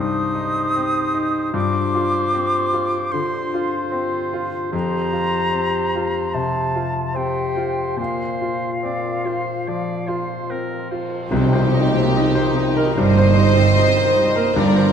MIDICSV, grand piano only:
0, 0, Header, 1, 2, 480
1, 0, Start_track
1, 0, Key_signature, -3, "minor"
1, 0, Tempo, 796813
1, 932, Time_signature, 4, 2, 24, 8
1, 3816, Tempo, 828729
1, 6696, Tempo, 809717
1, 8840, End_track
2, 0, Start_track
2, 0, Title_t, "Grand piano"
2, 0, Program_c, 0, 0
2, 0, Control_c, 0, 64, 127
2, 0, Note_on_c, 0, 36, 51
2, 0, Note_on_c, 0, 43, 44
2, 0, Note_on_c, 0, 60, 42
2, 0, Note_on_c, 0, 63, 38
2, 117, Note_off_c, 0, 63, 0
2, 210, Note_on_c, 0, 63, 40
2, 352, Note_off_c, 0, 43, 0
2, 456, Note_off_c, 0, 60, 0
2, 456, Note_on_c, 0, 60, 41
2, 595, Note_off_c, 0, 63, 0
2, 687, Note_on_c, 0, 63, 37
2, 837, Note_off_c, 0, 60, 0
2, 925, Note_on_c, 0, 43, 51
2, 929, Note_off_c, 0, 63, 0
2, 944, Control_c, 0, 64, 0
2, 947, Note_off_c, 0, 36, 0
2, 1026, Control_c, 0, 64, 127
2, 1172, Note_on_c, 0, 65, 40
2, 1409, Note_on_c, 0, 60, 44
2, 1552, Note_off_c, 0, 65, 0
2, 1647, Note_on_c, 0, 65, 38
2, 1792, Note_off_c, 0, 60, 0
2, 1860, Note_off_c, 0, 43, 0
2, 1887, Note_on_c, 0, 50, 42
2, 2033, Note_off_c, 0, 65, 0
2, 2132, Note_on_c, 0, 65, 38
2, 2273, Note_off_c, 0, 50, 0
2, 2360, Note_on_c, 0, 60, 39
2, 2515, Note_off_c, 0, 65, 0
2, 2609, Note_on_c, 0, 65, 41
2, 2750, Note_off_c, 0, 60, 0
2, 2848, Note_on_c, 0, 41, 51
2, 2851, Note_off_c, 0, 65, 0
2, 2863, Control_c, 0, 64, 0
2, 2978, Control_c, 0, 64, 127
2, 3090, Note_on_c, 0, 65, 35
2, 3330, Note_on_c, 0, 60, 35
2, 3477, Note_off_c, 0, 65, 0
2, 3586, Note_on_c, 0, 65, 34
2, 3719, Note_off_c, 0, 60, 0
2, 3792, Note_off_c, 0, 41, 0
2, 3822, Note_on_c, 0, 48, 35
2, 3964, Note_off_c, 0, 65, 0
2, 4059, Note_on_c, 0, 65, 32
2, 4198, Note_off_c, 0, 48, 0
2, 4286, Note_on_c, 0, 60, 33
2, 4436, Note_off_c, 0, 65, 0
2, 4527, Note_on_c, 0, 65, 33
2, 4672, Note_off_c, 0, 60, 0
2, 4764, Note_on_c, 0, 46, 37
2, 4771, Note_off_c, 0, 65, 0
2, 4784, Control_c, 0, 64, 0
2, 4887, Control_c, 0, 64, 127
2, 5018, Note_on_c, 0, 65, 27
2, 5261, Note_on_c, 0, 60, 30
2, 5406, Note_off_c, 0, 65, 0
2, 5504, Note_on_c, 0, 65, 28
2, 5649, Note_off_c, 0, 60, 0
2, 5718, Note_off_c, 0, 46, 0
2, 5755, Note_on_c, 0, 53, 31
2, 5890, Note_off_c, 0, 65, 0
2, 5985, Note_on_c, 0, 65, 33
2, 6132, Note_off_c, 0, 53, 0
2, 6227, Note_on_c, 0, 60, 29
2, 6365, Note_off_c, 0, 65, 0
2, 6469, Note_on_c, 0, 65, 34
2, 6606, Note_off_c, 0, 60, 0
2, 6701, Note_on_c, 0, 36, 60
2, 6702, Note_off_c, 0, 65, 0
2, 6709, Control_c, 0, 64, 0
2, 6812, Control_c, 0, 64, 127
2, 6828, Note_on_c, 0, 72, 50
2, 6953, Note_on_c, 0, 63, 49
2, 7016, Note_off_c, 0, 72, 0
2, 7070, Note_on_c, 0, 60, 48
2, 7138, Note_off_c, 0, 63, 0
2, 7203, Note_on_c, 0, 63, 56
2, 7258, Note_off_c, 0, 60, 0
2, 7316, Note_on_c, 0, 72, 60
2, 7386, Note_off_c, 0, 63, 0
2, 7440, Note_on_c, 0, 63, 46
2, 7506, Note_off_c, 0, 72, 0
2, 7561, Note_on_c, 0, 70, 53
2, 7629, Note_off_c, 0, 63, 0
2, 7648, Note_off_c, 0, 36, 0
2, 7684, Note_on_c, 0, 43, 54
2, 7749, Note_off_c, 0, 70, 0
2, 7805, Note_on_c, 0, 72, 54
2, 7869, Note_off_c, 0, 43, 0
2, 7921, Note_on_c, 0, 63, 52
2, 7988, Note_off_c, 0, 72, 0
2, 8038, Note_on_c, 0, 60, 49
2, 8105, Note_off_c, 0, 63, 0
2, 8156, Note_on_c, 0, 63, 49
2, 8223, Note_off_c, 0, 60, 0
2, 8274, Note_on_c, 0, 72, 53
2, 8341, Note_off_c, 0, 63, 0
2, 8387, Note_on_c, 0, 63, 49
2, 8459, Note_off_c, 0, 72, 0
2, 8504, Note_on_c, 0, 70, 51
2, 8575, Note_off_c, 0, 63, 0
2, 8622, Note_off_c, 0, 70, 0
2, 8624, Note_on_c, 0, 43, 67
2, 8633, Control_c, 0, 64, 0
2, 8720, Control_c, 0, 64, 127
2, 8743, Note_on_c, 0, 72, 53
2, 8840, Note_off_c, 0, 43, 0
2, 8840, Note_off_c, 0, 72, 0
2, 8840, End_track
0, 0, End_of_file